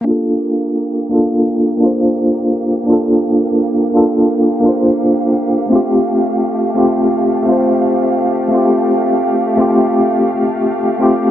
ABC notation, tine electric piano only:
X:1
M:4/4
L:1/8
Q:"Swing 16ths" 1/4=85
K:Gm
V:1 name="Tine electric piano"
[B,DFA]3 [B,DFA]2 [B,DFc]3 | [B,DFA]3 [B,DFA]2 [B,DFc]3 | [A,CFG]3 [A,CFG]2 [A,CFc]3 | [A,CFG]3 [A,CFG]2 z2 [A,CFG] |]